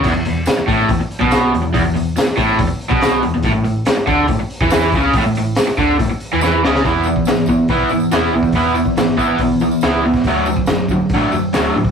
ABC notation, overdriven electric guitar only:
X:1
M:4/4
L:1/16
Q:1/4=141
K:Emix
V:1 name="Overdriven electric guitar" clef=bass
E,, E,, E,,2 z2 A,,2 E,, z2 B,,3 E,, E,, | E,, E,, E,,2 z2 A,,2 E,, z2 B,,3 E,, E,, | A,, A,, A,,2 z2 D,2 A,, z2 E, E,2 C,2 | A,, A,, A,,2 z2 D,2 A,, z2 E, E,2 C,2 |
[E,B,E]2 [E,B,]2 [E,B,]2 [E,B,]2 [E,B,E]2 [E,B,]2 [E,B,E]2 [E,B,]2 | [E,B,E]2 [E,B,]2 [E,B,]2 [E,B,E]2 [E,B,]2 [E,B,]2 [E,B,E]2 [E,B,]2 | [D,F,A,]2 [D,F,]2 [D,F,]2 [D,F,]2 [D,F,A,]2 [D,F,]2 [D,F,A,]2 [D,F,]2 |]